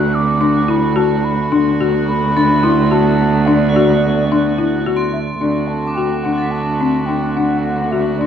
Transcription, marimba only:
Already playing: F#4
0.41 D4
0.68 E4
0.96 F#4
1.52 D4
1.81 F#4
2.36 D4
2.63 E4
2.91 F#4
3.47 D4
3.76 F#4
4.32 D4
4.58 E4
4.86 F#4
5.41 D4
5.97 F#4
6.25 D4
6.81 C4
7.09 D4
7.37 D4
7.92 F#4
8.21 D4

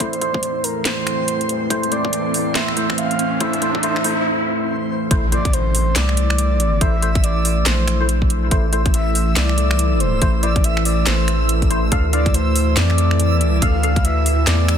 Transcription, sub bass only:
5.11 A1
5.96 C2
6.81 A1
7.66 A#1
8.51 A1
9.36 C2
10.22 A1
11.07 A1
11.92 D2
12.77 F2
13.62 D2
14.47 E2

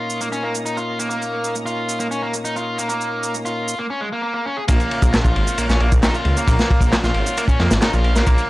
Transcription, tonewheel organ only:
Already playing: A#2 A#3 C#4 D#4 A#5
4.68 A#3 C#4 F4

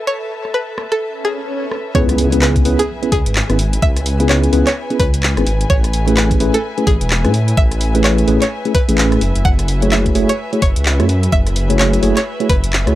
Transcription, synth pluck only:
0.07 C#5
0.54 B4
0.92 A4
1.25 G#4
1.95 C#5
2.42 B4
2.79 G#4
3.12 G#4
3.82 E5
4.29 C#5
4.67 C#5
5.00 B4
5.70 C#5
6.17 B4
6.54 A4
6.87 G#4
7.57 E5
8.04 C#5
8.42 C#5
8.75 B4
9.45 F#5
9.92 E5
10.29 C#5
10.62 C#5
11.32 E5
11.79 C#5
12.17 C#5
12.49 B4

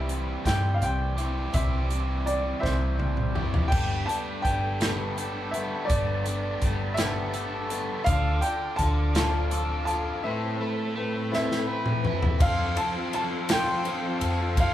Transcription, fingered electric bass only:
Already playing: C2
0.45 G2
0.80 C2
1.54 C2
2.63 C2
3.72 G1
4.44 G1
5.89 G1
6.62 G1
8.07 D2
8.79 D2
12.41 F2
14.21 F2
14.58 F2

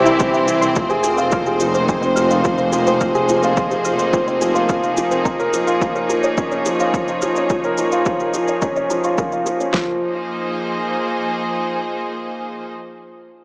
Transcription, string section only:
Already playing: C4 E4 G4 C5
0.76 A#3
1.29 D#4
1.77 G#4
6.03 C#5
9.75 F3
9.83 A#3
9.93 D#4
10.01 G#4
10.09 C5

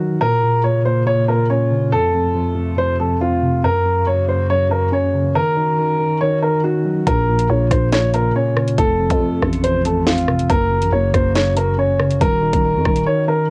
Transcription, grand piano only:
Already playing: F#4
0.21 A#4
0.64 C#5
0.85 C5
1.07 C#5
1.28 A#4
1.50 C#5
1.92 A4
2.78 C5
3.00 A4
3.21 F4
3.64 A#4
4.07 C#5
4.28 C5
4.50 C#5
4.71 A#4
4.93 C#5
5.35 A#4
6.21 C#5
6.42 A#4
6.64 F#4
7.07 A#4
7.50 C#5
7.71 C5
7.93 C#5
8.14 A#4
8.36 C#5
8.78 A4
9.64 C5
9.85 A4
10.07 F4
10.50 A#4
10.92 C#5
11.14 C5
11.35 C#5
11.57 A#4
11.79 C#5
12.21 A#4
13.06 C#5
13.28 A#4

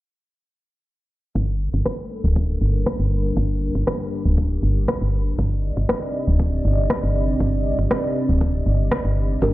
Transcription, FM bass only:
1.35 G1
1.74 G1
2.24 D1
2.61 G1
3.00 G1
3.37 G1
3.75 G1
4.26 D1
4.63 G1
5.01 G1
5.39 G1
5.77 G1
6.28 D1
6.65 G1
7.03 G1
7.40 G1
7.79 G1
8.29 D1
8.66 G1
9.05 G1
9.42 G1

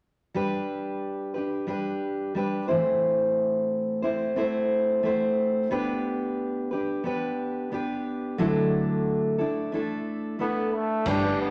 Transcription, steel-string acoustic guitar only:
0.34 G3 D4 G4 B4
1.34 D4 G4 B4
1.67 G3 D4 G4 B4
2.35 G3 D4 G4 B4
2.68 A2 E3 A3 C4 E4 C5
4.02 A3 C4 E4 C5
4.36 A3 C4 E4 C5
5.03 A3 C4 E4 C5
5.71 B3 D4 G4 B4
6.71 D4 G4 B4
7.04 B3 D4 G4 B4
7.72 B3 D4 G4 B4
8.38 D3 F#3 A3 D4 E4 A4
9.38 A3 D4 E4 A4
9.72 A3 D4 E4 A4
10.39 A3 D4 E4 A4
11.07 G3 D4 G4 B4
11.24 D4 G4 B4

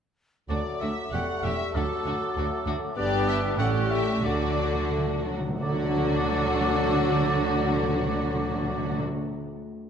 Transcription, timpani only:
0.51 D3
1.75 D3
4.24 D3
4.33 D3
4.40 D3
4.57 D3
4.73 D3
4.82 D3
4.90 D3
4.98 D3
5.07 D3
5.16 D3
5.25 D3
5.33 D3
5.40 D3
5.49 D3
5.62 D3
5.69 D3
5.76 D3
5.83 D3
5.90 D3
5.97 D3
6.04 D3
6.11 D3
6.26 D3
6.33 D3
6.40 D3
6.47 D3
6.53 D3
6.61 D3
6.67 D3
6.75 D3
6.82 D3
6.89 D3
6.95 D3
7.02 D3
7.08 D3
7.15 D3
7.22 D3
7.29 D3
7.36 D3
7.42 D3
7.49 D3
7.55 D3
7.62 D3
7.70 D3
7.76 D3
7.83 D3
7.88 D3
7.95 D3
8.01 D3
8.09 D3
8.15 D3
8.22 D3
8.29 D3
8.36 D3
8.42 D3
8.49 D3
8.56 D3
8.63 D3
8.70 D3
8.78 D3
8.85 D3
8.91 D3
8.99 D3

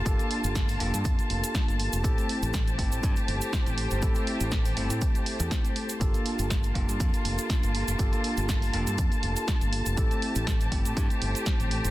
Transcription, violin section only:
Already playing: A#3 F4 A5
2.04 G4 C5
6.01 A#3 F4 A5
9.98 G4 C5

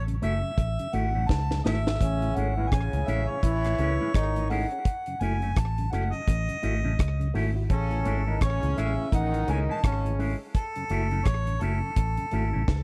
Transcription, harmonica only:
0.23 E5
0.93 F#5
1.28 A5
1.64 E5
2.36 F#5
2.72 G#5
3.07 E5
3.29 C#5
4.50 F#5
5.21 G#5
5.57 A5
5.91 F#5
6.13 D#5
7.70 A4
8.42 C#5
8.78 E5
9.14 F#5
9.49 G#5
9.71 A5
10.56 A4
11.26 C#5
11.61 A4

